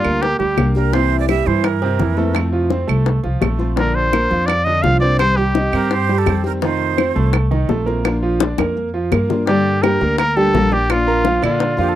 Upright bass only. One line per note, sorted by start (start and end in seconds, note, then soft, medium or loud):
0.04 0.37 D2 medium
0.40 0.56 D2 medium
0.57 1.41 C2 medium
1.47 1.96 G2 medium
2.00 2.83 F2 medium
2.89 3.22 C2 medium
3.24 3.41 C2 medium
3.42 4.25 A#1 medium
4.31 4.81 F2 medium
4.84 5.67 C2 medium
5.73 6.23 G2 medium
6.27 7.10 F2 medium
7.16 7.66 C2 medium
7.69 8.53 A#1 medium
8.58 9.08 F2 medium
9.12 9.95 G2 medium
10.01 10.51 D2 medium
10.53 11.37 A#1 medium
11.43 11.76 A#2 medium
11.78 11.95 F2 medium